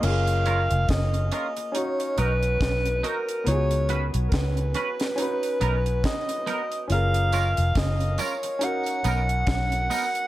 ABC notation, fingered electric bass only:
X:1
M:4/4
L:1/16
Q:"Swing 16ths" 1/4=70
K:F#
V:1 name="Fingered electric bass" clef=bass
F,,,3 E,,, F,,,2 z4 B,,,2 B,,,2 z2 | C,,3 B,,, C,,2 z4 B,,,2 z4 | F,,,3 E,,, F,,,2 z4 B,,,2 B,,,2 z2 |]